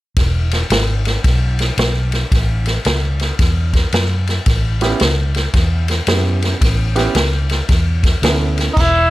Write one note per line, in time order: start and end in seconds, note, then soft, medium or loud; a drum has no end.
0.16 0.62 E1 medium
0.16 kick loud
0.16 snare soft
0.16 ride medium
0.51 snare soft
0.51 ride medium
0.70 1.16 G#1 medium
0.70 snare medium
0.70 ride medium
1.05 snare soft
1.05 ride medium
1.24 1.70 B1 medium
1.24 kick medium
1.24 snare soft
1.24 ride medium
1.59 snare soft
1.59 ride medium
1.77 2.23 B1 medium
1.77 snare loud
1.77 ride medium
2.12 snare soft
2.12 ride medium
2.31 2.77 A1 medium
2.31 kick loud
2.31 snare soft
2.31 ride medium
2.66 snare soft
2.66 ride medium
2.85 3.31 C#2 medium
2.85 snare medium
2.85 ride medium
3.20 snare soft
3.20 ride soft
3.39 3.85 E2 medium
3.39 kick loud
3.39 snare soft
3.39 ride medium
3.73 kick medium
3.73 snare soft
3.73 ride soft
3.92 4.38 F#2 medium
3.92 snare medium
3.92 ride medium
4.27 snare soft
4.27 ride medium
4.46 4.92 A1 medium
4.46 kick loud
4.46 snare soft
4.46 ride medium
4.81 4.99 B3 medium
4.81 4.99 C#4 medium
4.81 4.99 E4 medium
4.81 4.99 G4 medium
4.81 snare soft
4.81 ride medium
5.00 5.46 C#2 medium
5.00 snare medium
5.00 ride medium
5.34 snare soft
5.34 ride soft
5.54 5.99 E2 medium
5.54 kick medium
5.54 snare soft
5.54 ride medium
5.88 snare soft
5.88 ride medium
6.07 6.53 F#2 medium
6.07 6.89 B3 soft
6.07 6.89 C#4 soft
6.07 6.89 E4 soft
6.07 6.89 G4 soft
6.07 snare medium
6.07 ride medium
6.42 snare soft
6.42 ride medium
6.61 7.07 A1 medium
6.61 kick loud
6.61 snare soft
6.61 ride medium
6.95 7.13 B3 medium
6.95 7.13 C#4 medium
6.95 7.14 E4 medium
6.95 7.13 G4 medium
6.95 snare soft
6.95 ride medium
7.15 7.60 C#2 medium
7.15 snare loud
7.15 ride medium
7.49 snare soft
7.49 ride medium
7.69 8.14 E2 medium
7.69 kick loud
7.69 snare soft
7.69 ride medium
8.03 kick medium
8.03 snare soft
8.03 ride medium
8.22 8.68 D2 medium
8.22 8.77 B3 soft
8.22 8.77 C#4 soft
8.22 8.77 E4 soft
8.22 8.77 A4 medium
8.22 snare loud
8.22 ride medium
8.58 snare soft
8.58 ride medium
8.73 9.10 E1 medium
8.73 8.82 D#4 medium
8.73 kick loud
8.73 crash medium
8.79 9.10 E4 medium
8.79 snare soft